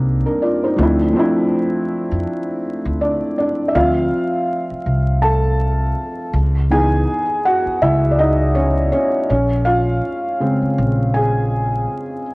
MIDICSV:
0, 0, Header, 1, 4, 480
1, 0, Start_track
1, 0, Tempo, 740741
1, 500, Time_signature, 4, 2, 24, 8
1, 7998, End_track
2, 0, Start_track
2, 0, Title_t, "Felt piano"
2, 0, Program_c, 0, 0
2, 0, Control_c, 0, 64, 127
2, 0, Note_on_c, 0, 55, 85
2, 0, Note_on_c, 0, 58, 76
2, 0, Note_on_c, 0, 60, 72
2, 0, Note_on_c, 0, 62, 70
2, 0, Note_on_c, 0, 63, 89
2, 167, Note_on_c, 0, 70, 65
2, 171, Note_off_c, 0, 62, 0
2, 171, Note_on_c, 0, 62, 52
2, 259, Note_off_c, 0, 70, 0
2, 261, Note_off_c, 0, 62, 0
2, 270, Note_on_c, 0, 74, 65
2, 276, Note_on_c, 0, 65, 56
2, 397, Note_off_c, 0, 74, 0
2, 400, Note_off_c, 0, 65, 0
2, 412, Note_on_c, 0, 72, 56
2, 417, Note_off_c, 0, 63, 0
2, 417, Note_on_c, 0, 63, 50
2, 494, Note_on_c, 0, 53, 77
2, 504, Note_on_c, 0, 57, 72
2, 508, Note_off_c, 0, 60, 0
2, 508, Control_c, 0, 64, 0
2, 510, Note_off_c, 0, 58, 0
2, 511, Note_off_c, 0, 55, 0
2, 515, Note_on_c, 0, 60, 71
2, 523, Note_on_c, 0, 62, 75
2, 535, Note_on_c, 0, 64, 86
2, 627, Control_c, 0, 64, 127
2, 633, Note_off_c, 0, 72, 0
2, 636, Note_off_c, 0, 63, 0
2, 657, Note_off_c, 0, 53, 0
2, 662, Note_off_c, 0, 57, 0
2, 667, Note_off_c, 0, 60, 0
2, 671, Note_off_c, 0, 62, 0
2, 677, Note_off_c, 0, 64, 0
2, 733, Note_on_c, 0, 53, 80
2, 742, Note_on_c, 0, 57, 69
2, 752, Note_on_c, 0, 60, 78
2, 764, Note_on_c, 0, 62, 72
2, 773, Note_on_c, 0, 64, 94
2, 1333, Note_off_c, 0, 53, 0
2, 1338, Note_off_c, 0, 57, 0
2, 1343, Note_off_c, 0, 60, 0
2, 1349, Note_off_c, 0, 62, 0
2, 1353, Note_off_c, 0, 64, 0
2, 1950, Note_on_c, 0, 74, 75
2, 1960, Note_on_c, 0, 62, 58
2, 2174, Note_off_c, 0, 62, 0
2, 2180, Note_off_c, 0, 74, 0
2, 2189, Note_on_c, 0, 74, 77
2, 2202, Note_on_c, 0, 62, 56
2, 2379, Note_off_c, 0, 62, 0
2, 2385, Note_on_c, 0, 76, 60
2, 2392, Note_off_c, 0, 74, 0
2, 2421, Note_off_c, 0, 76, 0
2, 2428, Control_c, 0, 64, 0
2, 2429, Note_on_c, 0, 53, 56
2, 2429, Note_on_c, 0, 77, 98
2, 2436, Note_on_c, 0, 60, 50
2, 2438, Note_on_c, 0, 76, 60
2, 2442, Note_on_c, 0, 65, 69
2, 2525, Control_c, 0, 64, 127
2, 3358, Note_off_c, 0, 77, 0
2, 3365, Note_off_c, 0, 65, 0
2, 3383, Note_on_c, 0, 81, 91
2, 3395, Note_on_c, 0, 69, 72
2, 4075, Note_off_c, 0, 81, 0
2, 4078, Note_off_c, 0, 53, 0
2, 4081, Note_off_c, 0, 60, 0
2, 4081, Note_off_c, 0, 69, 0
2, 4082, Note_off_c, 0, 76, 0
2, 4108, Control_c, 0, 64, 0
2, 4226, Control_c, 0, 64, 127
2, 4342, Note_on_c, 0, 52, 55
2, 4347, Note_on_c, 0, 59, 49
2, 4349, Note_on_c, 0, 80, 110
2, 4351, Note_on_c, 0, 63, 61
2, 4351, Note_on_c, 0, 68, 85
2, 4674, Note_off_c, 0, 52, 0
2, 4677, Note_off_c, 0, 59, 0
2, 4679, Note_off_c, 0, 63, 0
2, 4799, Note_off_c, 0, 68, 0
2, 4828, Note_on_c, 0, 78, 98
2, 4835, Note_on_c, 0, 66, 75
2, 4839, Note_off_c, 0, 80, 0
2, 5051, Note_off_c, 0, 66, 0
2, 5066, Note_on_c, 0, 76, 95
2, 5071, Note_off_c, 0, 78, 0
2, 5071, Note_on_c, 0, 64, 70
2, 5253, Note_off_c, 0, 64, 0
2, 5257, Note_on_c, 0, 74, 70
2, 5270, Note_off_c, 0, 76, 0
2, 5297, Note_off_c, 0, 74, 0
2, 5306, Note_on_c, 0, 75, 90
2, 5313, Note_on_c, 0, 63, 70
2, 5530, Note_off_c, 0, 63, 0
2, 5539, Note_on_c, 0, 73, 86
2, 5550, Note_off_c, 0, 75, 0
2, 5550, Note_on_c, 0, 61, 66
2, 5768, Note_off_c, 0, 61, 0
2, 5769, Note_off_c, 0, 73, 0
2, 5778, Note_on_c, 0, 73, 84
2, 5790, Note_on_c, 0, 61, 69
2, 6008, Note_off_c, 0, 61, 0
2, 6012, Note_off_c, 0, 73, 0
2, 6021, Note_on_c, 0, 73, 80
2, 6028, Control_c, 0, 64, 0
2, 6031, Note_on_c, 0, 61, 67
2, 6129, Control_c, 0, 64, 127
2, 6249, Note_off_c, 0, 61, 0
2, 6253, Note_on_c, 0, 77, 92
2, 6264, Note_on_c, 0, 65, 76
2, 6268, Note_off_c, 0, 73, 0
2, 6741, Note_on_c, 0, 49, 54
2, 6747, Note_on_c, 0, 56, 53
2, 6750, Note_on_c, 0, 60, 59
2, 7196, Note_off_c, 0, 65, 0
2, 7220, Note_on_c, 0, 80, 84
2, 7235, Note_on_c, 0, 68, 69
2, 7245, Note_off_c, 0, 77, 0
2, 7914, Note_off_c, 0, 80, 0
2, 7921, Note_off_c, 0, 68, 0
2, 7998, Note_off_c, 0, 49, 0
2, 7998, Note_off_c, 0, 56, 0
2, 7998, Note_off_c, 0, 60, 0
2, 7998, End_track
3, 0, Start_track
3, 0, Title_t, "Upright bass"
3, 0, Program_c, 1, 32
3, 0, Note_on_c, 1, 36, 88
3, 142, Note_off_c, 1, 36, 0
3, 508, Note_on_c, 1, 38, 109
3, 723, Note_off_c, 1, 38, 0
3, 1371, Note_on_c, 1, 41, 82
3, 1457, Note_off_c, 1, 41, 0
3, 1849, Note_on_c, 1, 38, 81
3, 2063, Note_off_c, 1, 38, 0
3, 2430, Note_on_c, 1, 38, 109
3, 2644, Note_off_c, 1, 38, 0
3, 3149, Note_on_c, 1, 36, 82
3, 3838, Note_off_c, 1, 36, 0
3, 4105, Note_on_c, 1, 37, 96
3, 4556, Note_off_c, 1, 37, 0
3, 5064, Note_on_c, 1, 37, 92
3, 5756, Note_off_c, 1, 37, 0
3, 6024, Note_on_c, 1, 34, 83
3, 6476, Note_off_c, 1, 34, 0
3, 6988, Note_on_c, 1, 34, 84
3, 7678, Note_off_c, 1, 34, 0
3, 7998, End_track
4, 0, Start_track
4, 0, Title_t, "Muted upright bass strokes"
4, 3050, Note_on_c, 9, 29, 48
4, 3115, Note_off_c, 9, 29, 0
4, 4960, Note_on_c, 9, 29, 46
4, 5025, Note_off_c, 9, 29, 0
4, 6883, Note_on_c, 9, 29, 46
4, 6948, Note_off_c, 9, 29, 0
4, 7998, End_track
0, 0, End_of_file